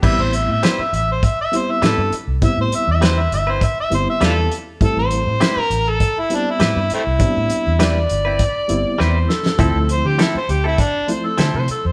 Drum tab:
CC |x---------------|----------------|----------------|----------------|
HH |--x-x-x-x-x-x-x-|x-x-x-x-x-x-x-x-|x-x-x-x-x-x-x-x-|x-x-x-x-x-x-----|
SD |----o-------o---|----o-------o---|----o-------o---|----o-------o-oo|
BD |o-------o-------|o-------o-------|o-------o-------|o-------o-------|

CC |----------------|
HH |x-x-x-x-x-x-x-x-|
SD |----o-------o---|
BD |o-------o-------|